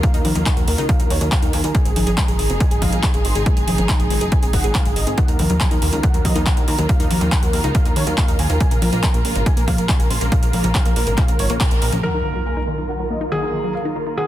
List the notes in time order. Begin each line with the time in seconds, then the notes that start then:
Already playing: D#3 F3 F#3 A#3 F4
0.03 A#3 F5, kick, closed hi-hat
0.14 D#2 D#4 A#4, closed hi-hat
0.25 D#2 D#3 A#4, open hi-hat, high conga
0.35 D#2 D#4 A#4, closed hi-hat, high conga
0.46 D#4 F#5, kick, clap, closed hi-hat
0.57 D#2 F#3 A#4, closed hi-hat
0.67 D#2 A#3 A#4, open hi-hat
0.78 C#2 D#4 A#4, closed hi-hat
0.89 D#3 F5, kick, closed hi-hat
1.00 D#2 D#4 A#4, closed hi-hat
1.10 D#2 D#4 C#5, open hi-hat
1.21 D#2 F#3 A#4, closed hi-hat
1.32 A#3 F5, kick, clap, closed hi-hat
1.42 D#2 D#4 A#4, closed hi-hat
1.53 D#2 D#3 G#5, open hi-hat
1.64 D#2 D#4 A#4, closed hi-hat
1.74 C3 G#3 D#4 G#4 G#5, kick, closed hi-hat
1.85 G#1 C4 G#4, closed hi-hat
1.96 G#1 D#4 G#4, open hi-hat, high conga
2.07 G#1 G#4, closed hi-hat, high conga
2.17 G#3 A#5, kick, clap, closed hi-hat
2.28 G#1 G#4, closed hi-hat
2.39 G#1 G#4, open hi-hat
2.50 F#1 C4 G#4, closed hi-hat
2.60 D#4 G#5, kick, closed hi-hat
2.71 G#1 G#4, closed hi-hat
2.82 G#1 G#3 F5, kick, open hi-hat, high conga
2.92 G#1 G#4, closed hi-hat
3.03 G#4 G#5, kick, clap, closed hi-hat
3.14 G#1 C4 G#4, closed hi-hat
3.25 G#1 D#4 C6, open hi-hat
3.35 G#1 G#4, closed hi-hat
3.46 G#3 G#5, kick, closed hi-hat
3.57 G#1 G#4, closed hi-hat
3.67 G#1 G#4, open hi-hat, high conga
3.78 G#1 C4 G#4, closed hi-hat, high conga
3.89 D#4 A#5, kick, clap, closed hi-hat
4.00 G#1 G#4, closed hi-hat
4.10 G#1 G#3 G#4, open hi-hat
4.21 F#1 G#4, closed hi-hat
4.32 G#4 G#5, kick, closed hi-hat
4.43 G#1 C4 G#4, closed hi-hat
4.53 G#1 D#4 F#5, kick, open hi-hat
4.64 G#1 G#4, closed hi-hat
4.75 G#3 F5, kick, clap, closed hi-hat
4.85 G#1 G#4, closed hi-hat
4.96 G#1 G#4 D#5, open hi-hat
5.07 G#1 C4 G#4, closed hi-hat
5.17 D#3 F3 F#3 A#3 F4 F#5, kick, closed hi-hat
5.28 D#2 D#4 A#4, closed hi-hat
5.39 D#2 D#3 A#4, open hi-hat, high conga
5.50 D#2 F#3 A#4, closed hi-hat, high conga
5.60 A#3 G#5, kick, clap, closed hi-hat
5.71 D#2 D#4 A#4, closed hi-hat
5.82 D#2 D#3 A#4, open hi-hat
5.93 C#2 D#4 A#4, closed hi-hat
6.03 F#5, kick, closed hi-hat
6.14 D#2 F#3 A#4, closed hi-hat
6.25 D#2 A#3 D#5, kick, open hi-hat, high conga
6.35 D#2 D#4 A#4, closed hi-hat
6.46 D#3 F#5, kick, clap, closed hi-hat
6.57 D#2 D#4 A#4, closed hi-hat
6.68 D#2 D#3 A#5, open hi-hat
6.78 D#2 F#3 A#4, closed hi-hat
6.89 A#3 F5, kick, closed hi-hat
7.00 D#2 D#4 A#4, closed hi-hat
7.10 D#2 D#3 A#4, open hi-hat, high conga
7.21 D#2 D#4 A#4, closed hi-hat, high conga
7.32 D#3 F#5, kick, clap, closed hi-hat
7.43 D#2 F#3 A#4, closed hi-hat
7.53 D#2 A#3 A#4, open hi-hat
7.64 C#2 D#4 A#4, closed hi-hat
7.75 D#3 F5, kick, closed hi-hat
7.85 D#2 D#4 A#4, closed hi-hat
7.96 D#2 D#3 C#5, open hi-hat
8.07 D#2 F#3 A#4, closed hi-hat
8.18 A#3 F5, kick, clap, closed hi-hat
8.28 D#2 D#4 A#4, closed hi-hat
8.39 D#2 D#3 G#5, open hi-hat
8.50 D#2 D#4 A#4, closed hi-hat
8.60 A#2 C#3 G#3 A#3 G#5, kick, closed hi-hat
8.71 A#1 C#3 A#4, closed hi-hat
8.82 A#1 F3 A#4, open hi-hat, high conga
8.92 A#1 A#3 A#4, closed hi-hat, high conga
9.03 A#2 A#5, kick, clap, closed hi-hat
9.14 A#1 A#3 A#4, closed hi-hat
9.24 A#1 A#2 A#4, open hi-hat
9.35 G#1 C#3 A#4, closed hi-hat
9.46 F3 G#5, kick, closed hi-hat
9.56 A#1 A#3 A#4, closed hi-hat
9.67 A#1 A#2 F5, kick, open hi-hat, high conga
9.78 A#1 A#3 A#4, closed hi-hat
9.89 A#2 G#5, kick, clap, closed hi-hat
9.99 A#1 C#3 A#4, closed hi-hat
10.10 A#1 F3 C6, open hi-hat
10.21 A#1 A#3 A#4, closed hi-hat
10.32 A#2 F5, kick, closed hi-hat
10.42 A#1 A#3 A#4, closed hi-hat
10.53 A#1 A#2 A#4, open hi-hat, high conga
10.64 A#1 C#3 A#4, closed hi-hat, high conga
10.75 F3 F5, kick, clap, closed hi-hat
10.86 A#1 A#3 A#4, closed hi-hat
10.96 A#1 A#2 A#4, open hi-hat
11.07 G#1 A#3 A#4, closed hi-hat
11.18 A#2 F5, kick, clap, closed hi-hat
11.28 A#1 C#3 A#4, closed hi-hat
11.39 G#1 F3 C#5, open hi-hat
11.50 A#1 A#3 A#4, closed hi-hat
11.61 A#2 A#4, kick, clap, closed hi-hat
11.71 A#1 A#3 A#4, closed hi-hat
11.82 A#1 A#2 A#4, open hi-hat
11.92 A#1 C#3 A#4, closed hi-hat, high conga
12.03 D#3 F#3 A#3 F4 A#4 F#5, impact
12.14 D#4 A#4
12.25 D#3 A#4
12.36 F#3 A#4
12.46 A#3 G#5
12.57 D#4 A#4
12.68 D#3 A#4
12.78 D#4 A#4
12.89 D#3 F#5
13.00 F#3 A#4
13.10 A#3 D#5
13.21 D#4 A#4
13.32 D#3 G#4 F#5
13.42 D#4 A#4
13.53 D#3 A#5
13.64 F#3 A#4
13.75 A#3 F5
13.85 D#4 A#4
13.96 D#3 A#4
14.07 D#4 A#4
14.17 D#3 G#4 F#5